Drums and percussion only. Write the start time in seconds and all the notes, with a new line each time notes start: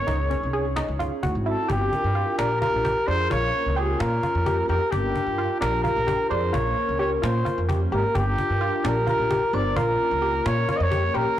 0.08 cajon bass
0.31 cajon bass
0.54 cajon slap
0.76 cajon slap
1.00 cajon bass
1.23 cajon bass
1.46 cajon slap
1.70 cajon bass
1.93 cajon bass
2.16 cajon slap
2.39 cajon slap
2.62 cajon bass
2.85 cajon bass
3.09 cajon slap
3.31 cajon bass
3.54 cajon slap
3.77 cajon slap
4.00 cajon slap
4.23 cajon bass
4.46 cajon bass
4.70 cajon slap
4.93 cajon bass
5.16 cajon bass
5.39 cajon slap
5.62 cajon slap
5.85 cajon bass
6.08 cajon bass
6.31 cajon slap
6.54 cajon bass
6.77 cajon slap
7.00 cajon slap
7.24 cajon slap
7.46 cajon bass
7.69 cajon bass
7.93 cajon slap
8.15 cajon bass
8.38 cajon bass
8.62 cajon slap
8.85 cajon slap
9.08 cajon bass
9.31 cajon bass
9.54 cajon slap
9.76 cajon bass
10.00 cajon slap
10.23 cajon slap
10.46 cajon slap
10.69 cajon bass
10.92 cajon bass
11.15 cajon slap